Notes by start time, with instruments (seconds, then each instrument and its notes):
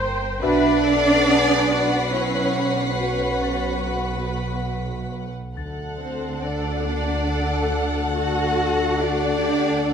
Already playing: double bass section G1, sub bass G1, violin section A#4 G5, viola section C5, harp C5 A#5 C6
0.42 double bass section B1, sub bass B1, cello section D4, french horn section F#4 B4, viola section B4, violin section B4 D5 F#5 B6 C7, harp E5 E6
0.85 viola section A4
1.29 viola section G#4
1.71 viola section F#4
2.13 cello section C#4, viola section E4, violin section C#5
2.57 viola section D3
3.00 cello section C#4, viola section F#4, french horn section F#4 B4, violin section C#5
3.29 violin section C#7
3.43 harp A6
3.86 cello section B3, violin section B4
5.56 sub bass D2, double bass section D2, french horn section D4 A4, violin section A4 F#5, harp A6
5.99 cello section C4, violin section C5
6.42 cello section D4, viola section A4, violin section D5
6.86 viola section A#3
7.29 viola section A4
7.72 harp F#5 F#6
8.14 cello section F#4, viola section A4, violin section F#5
8.99 cello section D4, viola section F#4, violin section D5
9.42 viola section G4
9.85 viola section A4